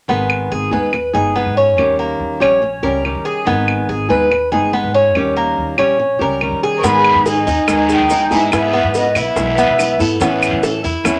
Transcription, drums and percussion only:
0.30 claves medium
0.93 claves medium
1.78 claves medium
2.42 claves medium
3.05 claves medium
3.68 claves medium
4.32 claves medium
5.15 claves medium
5.78 claves medium
6.41 claves medium
6.84 high bongo medium
6.84 long guiro medium
6.84 maracas medium
7.04 claves medium
7.26 high bongo medium
7.26 short guiro medium
7.26 maracas medium
7.47 high bongo soft
7.47 short guiro medium
7.47 maracas soft
7.68 high bongo medium
7.68 long guiro medium
7.68 claves medium
7.68 maracas medium
7.89 high bongo soft
7.89 maracas medium
8.10 high bongo soft
8.10 low bongo medium
8.10 short guiro medium
8.10 maracas medium
8.31 high bongo soft
8.31 short guiro medium
8.31 maracas soft
8.52 high bongo medium
8.52 long guiro medium
8.52 claves medium
8.52 maracas medium
8.94 high bongo medium
8.94 short guiro medium
8.94 maracas medium
9.15 high bongo soft
9.15 short guiro medium
9.15 claves medium
9.15 maracas soft
9.36 high bongo medium
9.36 long guiro medium
9.36 maracas medium
9.58 high bongo soft
9.58 maracas medium
9.79 high bongo soft
9.79 low bongo medium
9.79 short guiro medium
9.79 claves medium
9.79 maracas medium
10.00 high bongo soft
10.00 short guiro medium
10.00 maracas soft
10.20 high bongo medium
10.20 long guiro medium
10.20 maracas medium
10.42 claves medium
10.42 maracas medium
10.63 high bongo medium
10.63 short guiro medium
10.63 maracas medium
10.84 high bongo soft
10.84 short guiro medium
10.84 maracas soft
11.05 high bongo medium
11.05 long guiro medium
11.05 claves medium
11.05 maracas medium

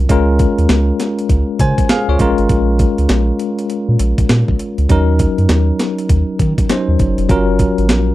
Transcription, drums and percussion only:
0.09 kick loud
0.09 closed hi-hat medium
0.39 kick medium
0.39 closed hi-hat medium
0.58 closed hi-hat soft
0.69 snare loud
0.69 closed hi-hat medium
1.00 snare medium
1.00 closed hi-hat medium
1.19 closed hi-hat medium
1.29 kick medium
1.29 closed hi-hat medium
1.59 kick medium
1.59 closed hi-hat medium
1.78 kick loud
1.78 closed hi-hat medium
1.89 snare loud
1.89 closed hi-hat medium
2.19 kick medium
2.19 closed hi-hat medium
2.38 closed hi-hat soft
2.49 kick loud
2.49 closed hi-hat medium
2.79 kick medium
2.79 closed hi-hat medium
2.98 closed hi-hat medium
3.09 snare loud
3.09 closed hi-hat medium
3.39 closed hi-hat medium
3.59 closed hi-hat soft
3.70 closed hi-hat medium
3.99 closed hi-hat medium
4.18 kick medium
4.18 closed hi-hat medium
4.29 snare loud
4.29 closed hi-hat medium
4.48 kick medium
4.59 closed hi-hat medium
4.78 closed hi-hat soft
4.89 kick loud
4.89 closed hi-hat medium
5.19 kick medium
5.19 closed hi-hat medium
5.38 closed hi-hat soft
5.49 snare loud
5.49 closed hi-hat medium
5.79 snare medium
5.79 closed hi-hat medium
5.98 closed hi-hat soft
6.09 kick medium
6.09 closed hi-hat medium
6.39 kick medium
6.39 closed hi-hat medium
6.58 kick loud
6.58 closed hi-hat medium
6.69 snare loud
6.69 closed hi-hat medium
6.99 kick medium
6.99 closed hi-hat medium
7.18 closed hi-hat soft
7.29 kick loud
7.29 closed hi-hat medium
7.59 kick medium
7.59 closed hi-hat medium
7.78 closed hi-hat soft
7.89 snare loud
7.89 closed hi-hat medium

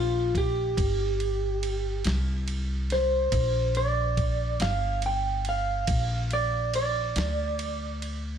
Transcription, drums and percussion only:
0.35 kick medium
0.35 ride medium
0.77 kick loud
0.77 ride medium
1.20 ride medium
1.63 ride medium
2.04 snare loud
2.04 ride medium
2.48 ride medium
2.90 snare soft
2.90 ride medium
3.32 kick medium
3.32 ride medium
3.75 ride medium
4.17 kick medium
4.17 ride medium
4.60 snare loud
4.60 ride medium
5.02 ride medium
5.45 ride medium
5.87 kick loud
5.87 ride medium
6.31 ride medium
6.74 ride medium
7.16 snare loud
7.16 ride medium
7.59 ride medium
8.02 ride medium

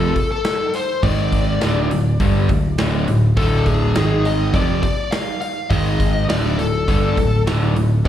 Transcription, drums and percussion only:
0.16 kick medium
0.16 open hi-hat medium
0.44 snare loud
0.44 open hi-hat medium
0.73 open hi-hat medium
1.03 kick loud
1.03 open hi-hat medium
1.32 kick medium
1.32 open hi-hat medium
1.61 snare loud
1.61 open hi-hat medium
1.91 open hi-hat medium
2.20 kick loud
2.20 open hi-hat medium
2.49 kick medium
2.49 open hi-hat medium
2.78 snare loud
2.78 open hi-hat medium
3.08 open hi-hat medium
3.37 kick loud
3.37 open hi-hat medium
3.66 kick medium
3.66 open hi-hat medium
3.95 snare loud
3.95 open hi-hat medium
4.25 open hi-hat medium
4.53 kick loud
4.53 open hi-hat medium
4.82 kick medium
4.82 open hi-hat medium
5.12 snare loud
5.12 open hi-hat medium
5.41 open hi-hat medium
5.70 kick loud
5.70 open hi-hat medium
6.00 kick medium
6.00 open hi-hat medium
6.29 snare loud
6.29 open hi-hat medium
6.59 open hi-hat soft
6.88 kick loud
6.88 open hi-hat medium
7.17 kick medium
7.17 open hi-hat medium
7.47 snare loud
7.47 open hi-hat medium
7.76 open hi-hat medium
8.05 open hi-hat medium

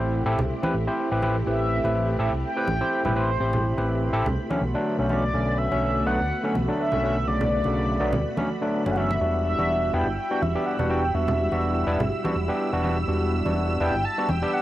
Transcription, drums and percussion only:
0.39 low conga loud
0.63 high conga loud
1.22 high conga medium
1.85 high conga medium
2.68 high conga medium
3.05 low conga medium
3.53 low conga medium
3.78 muted conga soft
4.26 low conga medium
4.51 high conga medium
5.09 high conga medium
5.72 high conga medium
6.55 high conga medium
6.92 low conga medium
7.41 low conga medium
7.64 muted conga soft
8.13 low conga loud
8.37 high conga medium
8.86 muted conga medium
8.96 high conga medium
9.11 muted conga medium
9.59 high conga medium
10.43 high conga medium
10.79 low conga medium
11.28 low conga loud
11.52 muted conga soft
12.00 low conga loud
12.25 high conga loud
12.84 high conga medium
13.46 high conga medium
14.29 high conga medium

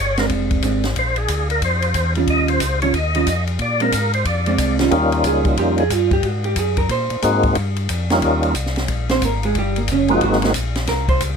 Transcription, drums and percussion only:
0.17 snare soft
0.17 ride soft
0.29 kick soft
0.29 ride medium
0.51 kick soft
0.51 ride soft
0.62 kick soft
0.62 hi-hat pedal soft
0.62 ride medium
0.84 snare soft
0.84 ride soft
0.96 kick soft
0.96 ride medium
1.16 ride soft
1.28 kick soft
1.28 hi-hat pedal medium
1.28 ride medium
1.50 ride medium
1.62 kick soft
1.62 ride medium
1.82 ride medium
1.94 kick soft
1.94 hi-hat pedal medium
1.94 ride medium
2.15 ride soft
2.27 kick soft
2.27 ride medium
2.48 ride soft
2.60 kick soft
2.60 hi-hat pedal medium
2.60 ride medium
2.82 ride soft
2.94 kick soft
2.94 ride medium
3.15 ride medium
3.27 kick soft
3.27 hi-hat pedal medium
3.27 ride medium
3.47 ride soft
3.59 kick soft
3.59 ride medium
3.80 ride medium
3.92 kick soft
3.92 hi-hat pedal medium
3.92 ride medium
4.13 ride medium
4.25 kick soft
4.25 ride medium
4.46 ride soft
4.58 kick soft
4.58 hi-hat pedal medium
4.58 ride medium
4.79 snare medium
4.79 ride soft
4.91 kick soft
4.91 ride medium
5.12 ride soft
5.24 kick soft
5.24 hi-hat pedal medium
5.24 ride medium
5.45 kick medium
5.45 ride soft
5.57 kick soft
5.57 ride medium
5.78 ride soft
5.90 kick soft
5.90 hi-hat pedal medium
5.90 ride medium
6.11 kick medium
6.11 ride soft
6.23 kick soft
6.23 ride medium
6.44 ride soft
6.56 kick soft
6.56 hi-hat pedal medium
6.56 ride medium
6.77 kick soft
6.77 ride medium
6.89 kick soft
6.89 ride medium
7.10 ride medium
7.22 kick soft
7.22 hi-hat pedal medium
7.22 ride medium
7.43 kick medium
7.43 ride soft
7.55 kick soft
7.55 ride medium
7.76 ride soft
7.89 kick soft
7.89 hi-hat pedal medium
7.89 ride medium
8.10 snare medium
8.10 ride soft
8.22 kick soft
8.22 ride medium
8.43 ride medium
8.55 kick soft
8.55 hi-hat pedal medium
8.55 ride medium
8.66 snare soft
8.76 snare soft
8.76 ride soft
8.88 kick soft
8.88 ride medium
9.09 snare medium
9.09 ride soft
9.22 kick soft
9.22 hi-hat pedal medium
9.22 ride medium
9.43 ride medium
9.55 kick soft
9.55 ride medium
9.76 ride medium
9.88 kick soft
9.88 hi-hat pedal medium
9.88 ride medium
10.08 ride soft
10.21 kick soft
10.21 ride medium
10.33 snare soft
10.42 snare soft
10.42 ride medium
10.54 kick soft
10.54 hi-hat pedal medium
10.54 ride medium
10.75 snare soft
10.75 ride medium
10.87 kick soft
10.87 snare soft
10.87 ride medium
11.08 kick medium
11.08 ride soft
11.20 kick soft
11.20 hi-hat pedal medium
11.20 ride medium

